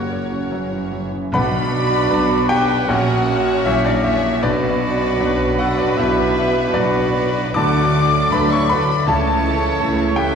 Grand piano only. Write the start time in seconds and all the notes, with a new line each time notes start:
Already playing: F#2 C#3 F#3 C#4 F#4 C#5 C#6
0.13 C#5
0.31 C#4
0.52 F#3
0.72 C#3
0.92 F#3
1.12 C#3
1.32 B1 B2 B4 F#5 B5
2.10 F#3 D4 B4
2.49 G4 G5
2.88 A#1 A#2 F#4 C#5 F#5
3.66 F#3 C#4 E4 C#5 E5
3.86 D4 D5
4.04 E4 E5
4.43 B1 B2 D4 B4 D5
5.19 F#3 D4 B4
5.59 F#4 F#5
5.79 D4 D5
5.97 B1 B2 E4 E5
6.74 F#3 D4 B4 D5
7.54 D2 D3 D5 A5 D6
8.32 F#3 D4 A4 B4 B5
8.53 C#5 C#6
8.69 B4 B5
9.07 C#2 C#3 A4 E5 A5
9.80 A3 E4 A4
10.16 G4 G5